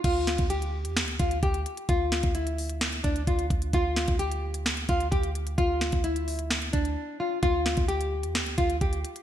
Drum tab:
CC |x---------------|----------------|----------------|----------------|
HH |x-xxxx-xxxxxxxxx|x-xxxxoxxxxxxxxx|x-xxxx-xxxxxxxxx|x-xxxxoxxxxx----|
SD |--o-----o-------|--o-----o-------|--o-----o-------|--o-----o-------|
BD |o--o------o-o---|o--o------o-o-o-|o--o------o-o---|o--o------o-----|

CC |----------------|
HH |x-xxxx-xxxxxxxxx|
SD |--o-----o-------|
BD |o--o------o-o---|